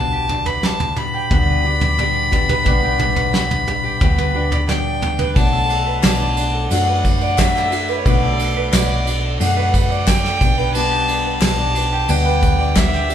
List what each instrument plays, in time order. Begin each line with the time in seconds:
Already playing: fingered electric bass B1, steel-string acoustic guitar B2 G3 B3 D4 G4, mandolin D4, fiddle A5
0.13 mandolin G4
0.29 mandolin D4, floor tom
0.45 mandolin B4, fiddle B5, floor tom
0.63 mandolin D4, fiddle A5, snare
0.80 floor tom
0.96 steel-string acoustic guitar B3 D4 G4, fiddle B5, mid tom
1.14 mandolin G4
1.30 fingered electric bass D2, steel-string acoustic guitar B2 G3 B3 D4 G4, kick, floor tom
1.48 mandolin B4
1.64 steel-string acoustic guitar B3 D4 G4, mandolin D4
1.81 mandolin D5, floor tom
1.97 steel-string acoustic guitar G3 B3 D4 G4, mandolin D4, mid tom
2.31 steel-string acoustic guitar B3 D4 G4, mandolin D4, kick, floor tom
2.49 mandolin B4, floor tom, mid tom
2.64 fingered electric bass B1, steel-string acoustic guitar B2 G3 B3, mandolin D4, kick, floor tom
2.68 steel-string acoustic guitar D4 G4
2.83 mandolin G4
2.99 mandolin D4, floor tom, mid tom
3.16 mandolin B4, floor tom
3.33 mandolin D4, snare
3.51 floor tom
3.68 mid tom
3.84 mandolin G4
4.01 fingered electric bass D2, steel-string acoustic guitar B2 G3 B3 D4 G4, kick, floor tom
4.18 mandolin B4, floor tom
4.34 steel-string acoustic guitar B3 D4 G4, mandolin D4
4.52 mandolin D5, floor tom
4.68 steel-string acoustic guitar G3 B3 D4 G4, mandolin D4, fiddle G5, snare, mid tom
5.02 mandolin D4, floor tom
5.19 mandolin B4, floor tom
5.36 fingered electric bass B1, steel-string acoustic guitar B2 F#3 A3 D4 F#4, mandolin D4, fiddle A5, kick, ride, tambourine
5.52 mandolin A4
5.69 mandolin D4, ride
5.86 mandolin B4
6.03 fingered electric bass B1, steel-string acoustic guitar F#3 A3 D4 F#4, mandolin D4, fiddle A5, snare, clap, ride, tambourine
6.20 mandolin D5
6.37 mandolin D4, ride, tambourine
6.54 mandolin A4
6.71 fingered electric bass F#2, steel-string acoustic guitar B2 F#3 A3 D4 F#4, mandolin D4, fiddle F#5, ride, tambourine
6.87 mandolin B4
7.05 kick, ride, tambourine
7.21 mandolin D5, tambourine
7.37 steel-string acoustic guitar F#3 A3 D4 F#4, mandolin D4, fiddle E5, kick, snare, clap, ride, tambourine
7.55 mandolin A4, snare
7.71 steel-string acoustic guitar A3 D4 F#4, mandolin D4, ride, tambourine
7.89 mandolin B4, tambourine
7.98 fiddle C#5
8.05 fingered electric bass B1, steel-string acoustic guitar B2 F#3 A3 D4 F#4, mandolin D4, fiddle D5, kick, ride, tambourine
8.22 mandolin A4
8.39 mandolin D4, ride
8.57 mandolin B4
8.72 fingered electric bass B1, steel-string acoustic guitar F#3 A3 D4 F#4, mandolin D4, fiddle D5, snare, clap, ride, tambourine
8.90 mandolin D5
9.06 steel-string acoustic guitar A3 D4 F#4, mandolin D4, ride, tambourine
9.24 mandolin A4
9.40 fingered electric bass F#2, steel-string acoustic guitar B2 F#3 A3 D4 F#4, mandolin D4, fiddle F#5, ride, tambourine
9.56 mandolin B4
9.74 kick, ride, tambourine
9.90 mandolin D5, tambourine
10.07 steel-string acoustic guitar F#3 A3 D4, mandolin D4, fiddle G5, kick, snare, clap, ride, tambourine
10.24 mandolin A4, snare
10.41 fingered electric bass B1, steel-string acoustic guitar B3 D4 G4, mandolin D4, kick, ride, tambourine
10.58 mandolin B4, tambourine
10.74 steel-string acoustic guitar B2 G3 B3 D4 G4, mandolin D4, fiddle A5, ride, tambourine
10.91 mandolin G4
11.08 mandolin D4, ride
11.24 mandolin B4
11.41 fingered electric bass B1, steel-string acoustic guitar G3 B3 D4 G4, mandolin D4, fiddle A5, snare, clap, ride, tambourine
11.58 mandolin D5
11.74 steel-string acoustic guitar B3 D4 G4, mandolin D4, ride, tambourine
11.92 mandolin G4
12.08 fingered electric bass D2, steel-string acoustic guitar B2 G3 B3 D4 G4, mandolin D4, fiddle G5, ride, tambourine
12.26 mandolin B4
12.43 kick, ride, tambourine
12.59 mandolin D5, tambourine
12.75 steel-string acoustic guitar G3 B3 D4 G4, mandolin D4, fiddle E5, kick, snare, clap, ride, tambourine
12.93 mandolin G4, snare
13.09 mandolin D4, steel-string acoustic guitar D4 G4, ride, tambourine